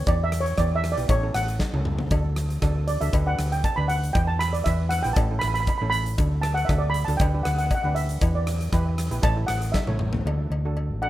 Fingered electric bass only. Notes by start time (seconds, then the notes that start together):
0.07 E2
0.58 E2
0.97 B1
1.09 A1
1.34 A1
1.73 C#2
2.11 D2
2.62 D2
3.01 D2
3.13 D2
3.38 D2
3.77 D2
4.15 E2
4.66 E2
5.05 A#1
5.16 A1
5.43 A1
5.81 A1
6.18 D2
6.69 D2
7.08 D2
7.20 D2
7.46 D2
7.84 D2
8.21 E2
8.72 E2
9.11 A#1
9.23 A1
9.48 A1
9.87 A1
10.25 D2
10.50 D2
10.90 A1